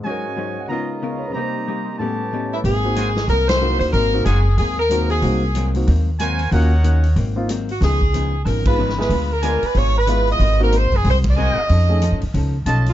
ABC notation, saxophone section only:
X:1
M:4/4
L:1/16
Q:"Swing" 1/4=186
K:Abmix
V:1 name="Saxophone section"
z16 | z12 z2 =E2 | A8 B2 c4 c2 | B4 A4 A2 B4 A2- |
A6 z8 z2 | z12 z2 G2 | A6- A3/2 =A/2 B2 _c4 c2- | _c2 B4 =B2 d2 B4 e2- |
e2 B2 c2 A2 c2 e6- | e6 z8 F2 |]